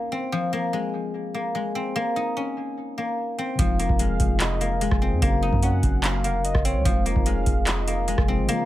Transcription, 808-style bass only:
3.59 3.88 F1 loud
3.89 4.19 F1 loud
4.20 4.89 F1 loud
4.91 5.13 F1 loud
5.12 5.22 F2 loud
5.22 5.51 F#1 loud
5.53 5.82 F#2 loud
5.83 6.26 F#1 loud
6.24 6.41 F1 loud
6.39 6.54 F#1 loud
6.55 6.77 F#1 loud
6.75 6.85 C#2 loud
6.85 7.15 F1 loud
7.16 7.45 F1 loud
7.47 8.15 F1 loud
8.18 8.40 F1 loud
8.38 8.48 G#1 loud

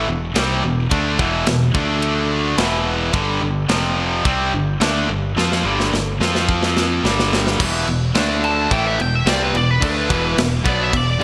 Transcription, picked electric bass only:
0.08 0.33 E1 medium
0.36 0.62 C2 medium
0.63 0.89 E1 medium
0.92 1.17 D2 medium
1.19 1.45 E1 medium
1.47 1.73 E1 medium
1.75 2.54 D2 medium
2.58 3.10 E1 medium
3.14 3.40 G1 medium
3.42 3.68 G1 medium
3.69 4.21 F1 medium
4.25 4.51 C2 loud
4.53 4.79 G1 medium
4.80 5.06 D2 loud
5.09 5.34 G1 medium
5.36 5.62 F2 medium
5.64 5.90 G1 medium
5.93 6.18 G1 medium
6.20 7.00 F2 medium
7.04 7.55 G1 medium
7.60 7.85 E1 medium
7.87 8.13 E1 medium
8.15 8.67 D2 medium
8.71 8.97 A1 medium
8.99 9.24 E1 medium
9.26 9.52 C2 medium
9.54 9.80 E1 medium
9.82 10.08 D2 medium
10.10 10.36 E1 loud
10.66 10.91 B1 loud
10.93 11.19 E1 medium

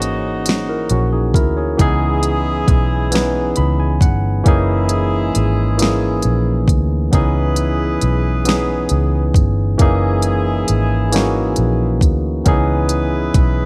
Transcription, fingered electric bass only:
0.02 0.87 G#1 medium
0.91 1.35 A#1 medium
1.35 1.75 D2 loud
1.80 2.64 C#2 medium
2.68 3.53 B1 medium
3.58 4.03 C#2 medium
4.01 4.42 G1 loud
4.46 5.31 F#1 loud
5.36 6.20 G#1 medium
6.25 6.65 A#1 medium
6.68 7.09 D2 medium
7.13 7.98 C#2 loud
8.03 8.87 B1 medium
8.91 9.31 C#2 medium
9.35 9.75 G1 loud
9.80 10.64 F#1 loud
10.69 11.54 G#1 medium
11.58 12.02 A#1 medium
12.02 12.42 D2 medium
12.46 13.31 C#2 medium
13.35 13.65 B1 medium

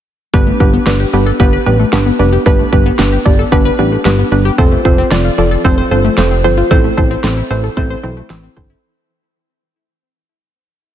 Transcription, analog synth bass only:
0.34 0.52 G1 loud
0.60 0.79 G1 loud
0.87 1.05 G1 loud
1.13 1.32 G1 medium
1.40 1.58 G1 loud
1.67 1.85 A1 medium
1.93 2.11 G1 medium
2.19 2.38 F1 medium
2.46 2.65 G1 loud
2.73 2.91 G1 loud
2.99 3.18 G1 loud
3.26 3.44 G1 medium
3.52 3.71 G1 loud
3.79 3.97 A1 medium
4.05 4.24 G1 medium
4.32 4.50 G1 medium
4.58 4.77 F1 loud
4.85 5.04 F1 medium
5.12 5.30 F1 loud
5.38 5.57 F1 medium
5.65 5.83 F1 loud
5.91 6.10 G1 medium
6.18 6.46 F1 medium
6.44 6.63 G1 medium
6.71 6.89 A1 loud
6.98 7.16 A1 medium
7.24 7.42 A1 loud
7.51 7.69 A1 loud
7.77 7.96 A1 loud
8.04 8.22 B1 medium
8.30 8.49 A1 medium
8.57 8.75 G1 medium

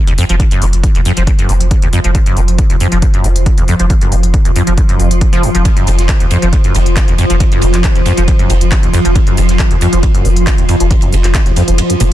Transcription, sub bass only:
0.07 0.18 F1 medium
0.29 0.39 F1 medium
0.62 0.72 F1 loud
0.73 0.83 F1 medium
0.95 1.05 F1 medium
1.17 1.27 F1 medium
1.49 1.60 F1 loud
1.61 1.71 F1 medium
1.82 1.93 F1 medium
2.04 2.15 F1 medium
2.37 2.48 F1 loud
2.48 2.58 F1 medium
2.70 2.80 F1 medium
2.92 3.02 F1 medium
3.24 3.35 F1 loud
3.36 3.46 F1 medium
3.58 3.68 F1 medium
3.79 3.90 F1 medium
4.12 4.23 F1 loud
4.23 4.34 F1 medium
4.45 4.56 F1 medium
4.67 4.77 F1 medium
5.00 5.10 F1 loud
5.11 5.21 F1 medium
5.33 5.43 F1 medium
5.55 5.65 F1 medium
5.87 5.98 F1 loud
5.99 6.09 F1 medium
6.21 6.31 F1 medium
6.42 6.53 F1 medium
6.75 6.86 F1 loud
6.86 6.96 F1 medium
7.08 7.18 F1 medium
7.30 7.40 F1 medium
7.62 7.73 F1 loud
7.74 7.84 F1 medium
7.96 8.06 F1 medium
8.17 8.28 F1 medium
8.50 8.61 F1 loud
8.61 8.72 F1 medium
8.83 8.94 F1 medium
9.05 9.15 F1 medium
9.38 9.48 F1 loud
9.49 9.59 F1 medium
9.71 9.81 F1 medium
9.93 10.03 F1 medium
10.25 10.36 F1 loud
10.37 10.47 F1 medium
10.59 10.69 F1 medium
10.80 10.91 F1 medium
11.13 11.24 F1 loud
11.24 11.34 F1 medium
11.46 11.56 F1 medium
11.68 11.78 F1 medium
12.00 12.11 F1 loud

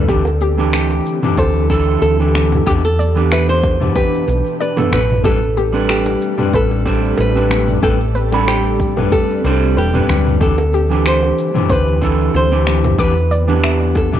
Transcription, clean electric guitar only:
0.08 0.22 E3 medium
0.08 0.23 C4 medium
0.08 0.23 D4 medium
0.08 0.23 G4 loud
0.58 1.18 E3 medium
0.58 1.19 C4 medium
0.58 1.19 D4 medium
0.58 1.19 G4 loud
1.23 1.66 E3 medium
1.23 1.67 C4 medium
1.23 1.67 D4 medium
1.23 1.67 G4 loud
1.70 2.15 E3 medium
1.70 2.15 C4 medium
1.70 2.16 D4 medium
1.70 2.16 A4 loud
2.20 2.63 E3 medium
2.20 2.63 C4 medium
2.20 2.64 D4 medium
2.20 2.64 G4 medium
2.66 2.80 E3 medium
2.66 2.81 B3 medium
2.66 2.81 D4 medium
2.66 2.81 G4 loud
3.16 3.76 E3 medium
3.16 3.77 B3 medium
3.16 3.77 D4 medium
3.16 3.77 G4 medium
3.80 4.24 E3 medium
3.80 4.24 B3 medium
3.80 4.24 D4 medium
3.80 4.25 G4 medium
4.76 4.97 E3 medium
4.76 4.97 B3 medium
4.76 4.98 D4 medium
4.76 4.98 A4 medium
5.24 5.38 G3 medium
5.24 5.38 C4 medium
5.24 5.39 D4 medium
5.24 5.39 B4 loud
5.73 6.34 G3 medium
5.73 6.34 C4 medium
5.73 6.34 D4 medium
5.73 6.35 B4 loud
6.38 6.82 G3 medium
6.38 6.82 C4 medium
6.38 6.82 D4 medium
6.38 6.83 B4 medium
6.85 7.31 G3 loud
6.85 7.31 C4 medium
6.85 7.32 D4 medium
6.85 7.32 C5 loud
7.35 7.79 G3 medium
7.35 7.79 C4 medium
7.35 7.80 D4 medium
7.35 7.80 B4 loud
7.82 7.97 G3 medium
7.82 7.97 C4 medium
7.82 7.97 D4 medium
7.82 7.97 B4 loud
8.32 8.93 G3 medium
8.32 8.93 C4 medium
8.32 8.93 D4 medium
8.32 8.94 B5 loud
8.97 9.40 G3 medium
8.97 9.41 C4 medium
8.97 9.41 D4 medium
8.97 9.41 B4 medium
9.44 9.90 G3 loud
9.44 9.90 C4 medium
9.44 9.90 D4 medium
9.44 9.90 C5 loud
9.93 10.37 G3 medium
9.93 10.37 C4 medium
9.93 10.38 D4 medium
9.93 10.38 B4 loud
10.40 10.55 E3 loud
10.40 10.55 C4 medium
10.40 10.55 D4 medium
10.40 10.56 G4 loud
10.90 11.50 E3 medium
10.90 11.51 C4 medium
10.90 11.51 D4 medium
10.90 11.51 G4 loud
11.54 11.98 E3 medium
11.54 11.98 C4 medium
11.54 11.99 D4 medium
11.54 11.99 G4 medium
12.01 12.47 E3 loud
12.01 12.47 C4 medium
12.01 12.47 D4 medium
12.01 12.48 A4 loud
12.51 12.95 E3 medium
12.51 12.95 C4 medium
12.51 12.96 D4 medium
12.51 12.96 G4 medium
12.98 13.13 E3 medium
12.98 13.13 B3 medium
12.98 13.13 D4 medium
12.98 13.13 G4 loud
13.48 14.08 E3 medium
13.48 14.09 B3 medium
13.48 14.09 D4 medium
13.48 14.09 G4 medium
14.12 14.20 E3 medium
14.12 14.20 B3 medium
14.12 14.20 D4 medium
14.12 14.20 G4 loud

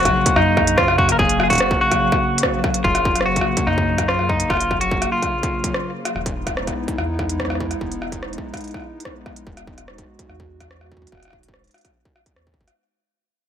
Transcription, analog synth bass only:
0.36 1.13 F#2 medium
1.19 1.75 F#1 loud
2.85 3.41 F#1 loud
3.67 4.44 F#2 medium
4.50 5.06 F#1 loud
6.15 6.71 E1 medium
6.98 7.75 E2 medium
7.81 8.37 E1 medium
9.47 10.03 E1 medium
10.29 11.06 E2 medium
11.12 11.68 E1 loud
12.36 12.59 E2 medium
12.57 12.70 G#1 medium

